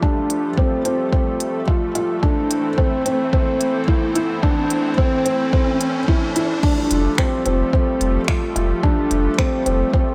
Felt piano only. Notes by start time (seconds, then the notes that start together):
0.03 D4
0.58 C4
0.85 C4
1.12 C4
1.68 F4
1.95 F4
2.23 D4
2.78 C4
3.05 C4
3.33 C4
3.88 E4
4.15 E4
4.43 D4
4.98 C4
5.25 C4
5.53 C4
6.08 E4
6.36 E4
6.63 D4
7.18 C4
7.46 C4
7.73 C4
8.28 F4
8.56 F4
8.83 D4
9.38 C4
9.66 C4
9.93 C4